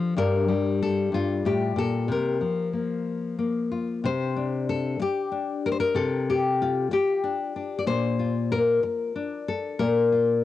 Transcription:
Already playing: F3 A4
0.17 G2 G3 D4 A#4
0.48 G3
0.82 A4
1.12 G2 F4
1.45 A2 G4
1.76 A#2 A4
2.08 C3 A#4
2.41 F3
2.73 A#3
3.39 A#3
3.72 F4
4.04 C3 C5
4.36 D4
4.69 A4
5.00 G4, muted nylon-string guitar stroke
5.32 D4
5.66 A#4
5.72 C5
5.80 A#4
5.95 C3 A4
6.30 G4
6.62 F4
6.91 G4, muted nylon-string guitar stroke
7.24 D4
7.56 D4
7.79 D5
7.87 A#2 C5
8.19 F4
8.52 A#4
8.83 muted nylon-string guitar stroke
9.16 D4
9.48 A4
9.79 A#2 A#4
10.12 F4

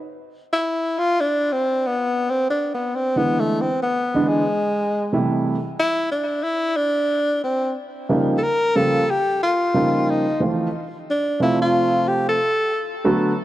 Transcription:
0.53 E4
0.99 F4
1.21 D4
1.53 C4
1.87 B3
2.30 C4
2.50 D4
2.75 B3
2.96 C4
3.16 D3 E3 G#3 B3 E4
3.40 A3
3.61 C4
3.83 B3
4.14 D3 E3 G#3 B3 D4
4.28 G#3
5.12 C3 E3 G3 A3 E4
5.80 E4
6.12 D4
6.44 E4
6.77 D4
7.44 C4
8.09 C#3 F3 G3 A#3 D#4
8.38 A4
8.43 A#4
8.75 C#3 F3 G3 A#3 F4 A4
9.11 G4
9.43 F4
9.74 C#3 F3 G3 A#3 D#4
10.10 D#4
10.40 E3 F3 A3 C4 F4
11.10 D4
11.40 C3 F3 A3 C4 E4 F4
11.62 F4
12.08 G4
12.29 A4
13.04 D3 F#3 A3 B3 F#4

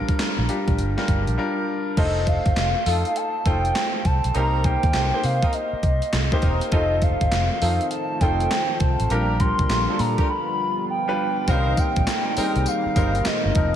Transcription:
Already playing: G3 D4 F4 A#4
0.09 kick, closed hi-hat
0.19 snare, clap, closed hi-hat
0.38 A#1
0.48 G3 D4 F4 G4, closed hi-hat
0.68 A#1, kick, closed hi-hat
0.79 G1, closed hi-hat
0.97 G3 D4 F4 A#4, snare
1.08 G1, kick, closed hi-hat
1.27 A#1, closed hi-hat
1.38 G3 D4 F4 A#4
1.97 F1 A3 D#4 F4 A4 C5 D#5, kick, closed hi-hat, crash
2.27 F5, kick, closed hi-hat
2.46 G1, kick, closed hi-hat
2.57 F1, snare, clap, closed hi-hat
2.86 F2 A3 D#4 F4 A4, open hi-hat
3.05 closed hi-hat
3.16 A5, closed hi-hat
3.45 F1 A3 D#4 F4 A4 C5 G5, kick, closed hi-hat
3.65 closed hi-hat
3.75 snare, clap, closed hi-hat
4.05 C2 A5, kick, closed hi-hat
4.24 B1, closed hi-hat
4.34 C2 A#3 C4 D#4 G4 A#4 C5 A#5, closed hi-hat
4.64 A#3 D#4 G4 C5 G5, kick, closed hi-hat
4.83 D#2, kick, closed hi-hat
4.94 C2 A#3 D#4 G4 C5, snare, clap, closed hi-hat
5.13 A#3 D#4 G4 C5
5.24 C3 F5, open hi-hat
5.42 C4 D#4 A#4, kick, closed hi-hat
5.50 D#5 F5, closed hi-hat
5.73 muted fingered electric bass stroke
5.83 C2, kick, closed hi-hat
6.02 closed hi-hat
6.13 C2, snare, clap, closed hi-hat
6.32 A#3 D#4 G4 C5, kick
6.42 E1 C4 D#4 A#4, kick, closed hi-hat
6.61 closed hi-hat
6.72 F1 A3 D#4 F4 A4 C5 D#5, kick, closed hi-hat
7.02 F5, kick, closed hi-hat
7.21 G1, kick, closed hi-hat
7.32 F1, snare, clap, closed hi-hat
7.62 F2 A3 D#4 F4 A4 C5, open hi-hat
7.81 closed hi-hat
7.91 A5, closed hi-hat
8.21 F1 A3 D#4 F4 A4 C5 G5, kick, closed hi-hat
8.40 closed hi-hat
8.51 snare, clap, closed hi-hat
8.80 C2 A5, kick, closed hi-hat
9.00 A1, closed hi-hat
9.10 A#1 D3 G3 A#3 D4 F4 G4 A#4 A#5, closed hi-hat
9.40 G3 D4 F4 A#4 C6, kick, closed hi-hat
9.59 C2, kick, closed hi-hat
9.70 A#1 G3 D4 F4 A#4, snare, clap, closed hi-hat
9.89 G3 D4 F4 A4
9.99 A#2 A#5, open hi-hat
10.18 D4 G4 A#4, kick, closed hi-hat
10.29 B3 F4 B5
10.90 G5
11.08 G3 D4 F4 B4
11.48 C2 A#2 D#3 G3 A#3 C4 C#4 D#4 A#4 C5 F5, kick, closed hi-hat, tambourine
11.55 D#4
11.77 G5, kick, closed hi-hat, tambourine
11.96 A#1, kick, closed hi-hat
12.07 snare, clap, closed hi-hat, tambourine
12.37 G3 C4 D#4 G#4 A#4 C5, muted fingered electric bass stroke, open hi-hat, tambourine
12.45 A#4
12.56 C2, closed hi-hat
12.66 F5, closed hi-hat, tambourine
12.86 muted fingered electric bass stroke
12.96 G1 G3 C4 D#4 A#4 C5, kick, closed hi-hat, tambourine
13.15 closed hi-hat
13.25 D#5, muted fingered electric bass stroke, snare, clap, closed hi-hat, tambourine
13.45 G1
13.55 F1 F3 C4 D#4 A#4, kick, closed hi-hat

